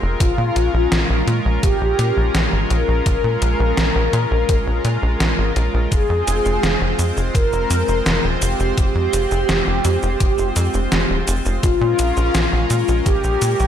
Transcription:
Already playing: G#3 C4 F4 A#4
0.02 F1
0.20 A#1 C#4 F4, kick, closed hi-hat
0.38 A#2
0.56 A#1, closed hi-hat
0.74 A#1
0.92 A#1, snare, closed hi-hat
1.10 A#1
1.27 A#2, closed hi-hat
1.45 A#1
1.63 A#1 G4, kick, closed hi-hat
1.81 A#1
1.99 A#2, closed hi-hat
2.17 A#1
2.35 A#1, snare, closed hi-hat
2.52 G#1
2.70 A#1 A#4, closed hi-hat
2.88 A#1
3.06 A#1, kick, closed hi-hat
3.24 A#2
3.42 A#1, closed hi-hat
3.60 A#1
3.77 A#1, snare, closed hi-hat
3.95 A#1
4.13 A#2, closed hi-hat
4.31 A#1
4.49 A#1, kick, closed hi-hat
4.67 A#1
4.85 A#2, closed hi-hat
5.02 A#1
5.20 A#1, snare, closed hi-hat
5.38 G#1
5.56 A#1, closed hi-hat
5.74 A#1
5.91 F1 C4 G#4 C5, kick, closed hi-hat, shaker
6.10 F2
6.27 F1, closed hi-hat, shaker
6.45 F1, shaker
6.63 F1, snare, closed hi-hat, shaker
6.81 F1
6.99 F2, closed hi-hat, shaker
7.17 F1, shaker
7.34 F1 A#4, kick, closed hi-hat, shaker
7.52 F1, shaker
7.70 F2, closed hi-hat, shaker
7.88 F1, shaker
8.06 F1, snare, closed hi-hat, shaker
8.24 D#1
8.42 F1 G4, closed hi-hat, shaker
8.60 F1, shaker
8.78 F1, kick, closed hi-hat, shaker
8.95 F2
9.13 F1, closed hi-hat, shaker
9.31 F1, shaker
9.49 F1, snare, closed hi-hat, shaker
9.67 F1
9.85 F2, closed hi-hat, shaker
10.03 F1, shaker
10.20 F1, kick, closed hi-hat, shaker
10.38 F1, shaker
10.56 F2, closed hi-hat, shaker
10.74 F1, shaker
10.92 F1, snare, closed hi-hat, shaker
11.10 D#1
11.28 F1, closed hi-hat, shaker
11.45 F1, shaker
11.63 A#1 G#3 C#4 F4 A#4, kick, closed hi-hat, shaker
11.81 A#2
11.99 A#1, closed hi-hat, shaker
12.17 A#1, shaker
12.35 A#1, snare, closed hi-hat, shaker
12.53 A#1
12.70 A#2, closed hi-hat, shaker
12.88 A#1, shaker
13.06 A#1 G4, kick, closed hi-hat, shaker
13.24 A#1, shaker
13.42 A#2, closed hi-hat, shaker
13.60 A#1, shaker

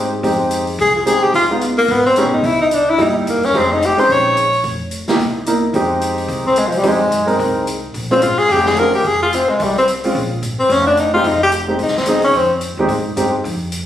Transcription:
Already playing: G#2
0.23 F2 G#3 C4 D#4 G4, kick, open hi-hat
0.51 closed hi-hat
0.67 open hi-hat
0.79 C2 G#4, kick, open hi-hat
0.95 F4
1.06 G#3 C4 D#4 G4 G#4, closed hi-hat
1.22 G4, muted upright bass stroke
1.34 C#2 F4, kick, open hi-hat
1.50 G#3 B3 D#4 F4
1.61 closed hi-hat
1.78 A#3
1.88 G#1 B3, kick, open hi-hat
2.06 C4
2.16 G#3 B3 C#4 D#4 G4, closed hi-hat
2.24 B1
2.34 C#2 D#4
2.44 C2 E4, kick, open hi-hat
2.61 D#4
2.71 D4, closed hi-hat
2.90 E4
2.98 G1 G3 A#3 D#4 E4, kick, open hi-hat
3.03 D#4
3.17 G3
3.26 E1 A#3, closed hi-hat
3.43 C#4, open hi-hat
3.54 F1 G#3 C4 D#4 G4, kick, open hi-hat
3.72 D#4
3.82 G4, closed hi-hat
3.97 G#3 C4 C#4 D#4 C5, open hi-hat
4.09 A#1 C#5, kick, open hi-hat
4.37 closed hi-hat
4.53 open hi-hat
4.63 F1, kick, open hi-hat
4.91 closed hi-hat
5.08 A#3 D#4 E4 G4, muted upright bass stroke, snare, open hi-hat
5.19 C2, kick, open hi-hat
5.46 A#3 D#4 E4 A#4, closed hi-hat
5.73 F2 G#3 C4 D#4 G4, kick, open hi-hat
6.01 closed hi-hat
6.18 open hi-hat
6.28 C2, kick, open hi-hat
6.46 C4
6.56 G#3, closed hi-hat
6.67 F3
6.71 muted upright bass stroke, open hi-hat
6.77 G3
6.83 F2 G#3 C4 D#4 G4, kick, open hi-hat
6.88 G#3
7.11 F#2, closed hi-hat
7.26 G#3 C4 D#4 A#4, open hi-hat
7.39 C2, kick, open hi-hat
7.67 closed hi-hat
7.94 A#1, kick, open hi-hat
8.11 G#3 C4 C#4 F4
8.21 G#1 F4, closed hi-hat
8.38 G#4, open hi-hat
8.49 F1 G4, kick, open hi-hat
8.66 G#4, snare
8.76 G#3 C4 C#4 F4 A#4, closed hi-hat
8.93 D#2 G4, open hi-hat
9.04 F1 G#4, kick, open hi-hat
9.23 F4
9.33 C4, closed hi-hat
9.48 G#3, muted upright bass stroke
9.59 C2 G3, kick, open hi-hat
9.78 C4
9.88 closed hi-hat
10.04 G#3 C4 C#4 F4, open hi-hat
10.15 A#1, kick, open hi-hat
10.42 G#1, closed hi-hat
10.59 C4
10.69 F1 C#4, kick, open hi-hat
10.87 D4
10.97 D#4, closed hi-hat
11.13 G#3 C4 D#4 F4 G4
11.24 F1 D#4, kick, open hi-hat
11.43 G4
11.52 closed hi-hat
11.68 G#3 C4 D#4 G4
11.79 C2 D#4, kick, open hi-hat
11.88 snare
11.97 C4, snare
12.06 G#3 C4 D#4 G#4, closed hi-hat
12.22 D#2 C#4, open hi-hat
12.33 F2 C4, kick, open hi-hat
12.61 closed hi-hat
12.77 D#2 G#3 C4 D#4 G4
12.88 G#2, kick, open hi-hat
13.16 G2 G#3 C4 D#4 G4, closed hi-hat
13.44 F2, kick, open hi-hat
13.72 closed hi-hat

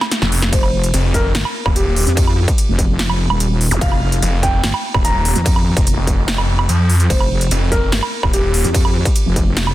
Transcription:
0.01 snare, low woodblock
0.11 snare, closed hi-hat
0.22 F1, snare
0.32 open hi-hat
0.42 snare, closed hi-hat
0.53 F1 C5, kick, closed hi-hat, ride
0.63 low woodblock
0.84 closed hi-hat
0.94 F1, closed hi-hat, ride
1.14 A#4, kick, closed hi-hat
1.35 G1, snare, closed hi-hat, ride
1.45 low woodblock
1.66 D#1, kick, low woodblock
1.76 G4, closed hi-hat, ride
1.96 open hi-hat
2.07 F2, closed hi-hat
2.17 kick, closed hi-hat, ride
2.27 low woodblock
2.48 kick, closed hi-hat
2.58 closed hi-hat, ride
2.69 F1
2.79 kick, closed hi-hat
2.99 snare, closed hi-hat, ride
3.10 low woodblock
3.30 D#1, low woodblock
3.40 closed hi-hat, ride
3.61 open hi-hat
3.71 F1, closed hi-hat, zap
3.81 F1 F5, kick, closed hi-hat, ride
3.92 low woodblock
4.12 closed hi-hat
4.22 F1, closed hi-hat, ride
4.43 G5, kick, closed hi-hat
4.64 G1, snare, closed hi-hat, ride
4.74 low woodblock
4.94 D#1, kick, low woodblock
5.05 A#5, closed hi-hat, ride
5.25 open hi-hat
5.36 F2, closed hi-hat
5.46 kick, closed hi-hat, ride
5.56 low woodblock
5.77 F1, kick, closed hi-hat
5.87 closed hi-hat, ride
5.97 F1
6.07 kick, closed hi-hat
6.28 snare, closed hi-hat, ride
6.38 F1, low woodblock
6.59 low woodblock
6.69 F2, closed hi-hat, ride
6.90 open hi-hat
7.00 closed hi-hat
7.10 F1 C5, kick, closed hi-hat, ride
7.20 low woodblock
7.41 closed hi-hat
7.51 F1, closed hi-hat, ride
7.72 A#4, kick, closed hi-hat
7.92 G1, snare, closed hi-hat, ride
8.03 low woodblock
8.23 D#1, kick, low woodblock
8.33 G4, closed hi-hat, ride
8.54 open hi-hat
8.64 F2, closed hi-hat
8.74 kick, closed hi-hat, ride
8.85 low woodblock
9.05 kick, closed hi-hat
9.16 closed hi-hat, ride
9.26 F1
9.36 kick, closed hi-hat
9.57 snare, closed hi-hat, ride
9.67 low woodblock

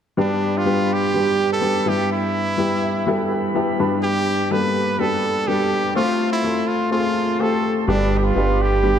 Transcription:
0.17 G2 G3 B3 D4 G4 B4 D5 B5
0.57 F4
0.65 G3 B3 D4 G4
0.93 G4
1.14 G3 B3 D4 G4
1.53 A4
1.61 G3 B3 D4 G4
1.86 G2 G3 B3 E4 G4 E5
2.12 E4
2.57 G3 B3 E4 G4
2.83 E5
3.07 G3 B3 E4 A4 G5
3.31 G5
3.55 G3 B3 E4 G4 A5
3.79 G2 G3 B3 D4 G4 D5 B5
4.03 G4
4.51 G3 A#3 D4 A4 B4
4.57 B3
4.99 G3 B3 D4 G4 A4
5.47 G3 B3 D4 G4 A4
5.95 A3 C4 F4 A4 C5 A5 C6
6.32 E4
6.43 A3 C4 F4 A4
6.67 F4
6.90 A3 C4 F4 G#4
6.98 A4
7.39 A3 C4 F4 G4 A4
7.88 G1 G2 G3 B3 D4 G4 B4 D5 B5
8.18 G4
8.24 F4
8.35 G1 G3 B3 D4 G4
8.61 G4
8.83 G3 B3 D4 G4

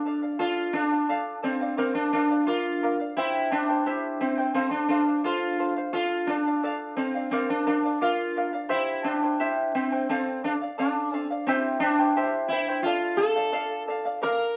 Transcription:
Already playing: D4
0.05 A4 D5 F5
0.22 D5 F5
0.39 F4 A4 D5 F5
0.73 D4 A4 D5 F5
0.91 D5 F5
1.09 A4 D5 F5
1.43 C4 A4 D5 F5
1.61 D5 F5
1.77 C4 A#4 D5 F5
1.95 D4
2.13 D4 A#4 D5 F5
2.30 D5 F5
2.47 F4 A#4 D5 F5
2.83 A#4 D5 F5
3.00 D5 F5
3.17 E4 G4 C5 E5 G5
3.52 D4 E4 C5 E5 G5
3.69 E4 C5 G5
3.86 E4 G4 C5 E5 G5
4.20 C4 E4 C5 E5 G5
4.38 E4 C5 G5
4.54 C4 A4 C5 F5
4.71 D4
4.88 D4 A4 C5 F5
5.07 C5 F5
5.24 F4 A4 C5 F5
5.59 A4 C5 F5
5.76 C5 F5
5.93 F4 A4 D5 F5
6.27 D4 A4 D5 F5
6.46 D5 F5
6.63 A4 D5 F5
6.97 C4 A4 D5 F5
7.14 D5 F5
7.31 C4 A#4 D5 F5
7.50 D4
7.66 D4 A#4 D5 F5
7.84 D5 F5
8.01 F4 A#4 D5 F5
8.36 A#4 D5 F5
8.53 D5 F5
8.69 E4 G4 C5 E5 G5
9.04 D4 E4 C5 E5 G5
9.23 E4 C5 G5
9.39 E4 G4 C5 E5 G5
9.75 C4 E4 C5 E5 G5
9.92 E4 C5 G5
10.09 C4 A4 D5 F5
10.44 D4 A4 D5 F5
10.61 D5 F5
10.78 D4 A4 D5 F5
11.13 A4 D5 F5
11.30 D5 F5
11.47 C4 E4 G4 C5 E5 G5
11.80 D4 E4 C5 E5 G5
11.99 E4 C5 G5
12.16 E4 G4 C5 E5 G5
12.48 E4 C5 E5 G5
12.68 E4 C5 G5
12.83 F4 A4 D5 F5
13.17 A4 D5 F5
13.36 D5 F5
13.52 A4 D5 F5
13.87 A4 D5 F5
14.05 D5 F5
14.22 A#4 D5 F5

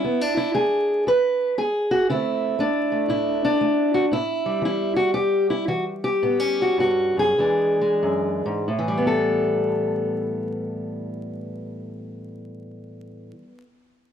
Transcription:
Already playing: E4
0.05 E2 B3
0.21 D4
0.37 E4
0.55 G#3 G#4
1.07 E2 B4
1.58 G#3 G#4
1.91 F#4
2.10 D3 A3 C4 E4
2.59 A3 D4
2.92 A3
3.08 A2 E4
3.45 D4
3.61 A3
3.94 F#4
4.11 A2 E4
4.46 G3
4.62 E3 E4
4.96 F#4
5.14 E2 G4
5.50 E4
5.68 E3 F#4
6.04 G4
6.22 A2 B3
6.40 C#4
6.62 F#4
6.78 G2 F#4
7.17 F#2 G#4
7.38 E2 E3 G#3 D4
7.81 G#3
8.03 F#2
8.46 G#2
8.68 A2
8.79 E3
8.88 G3
8.98 B3
9.07 A4

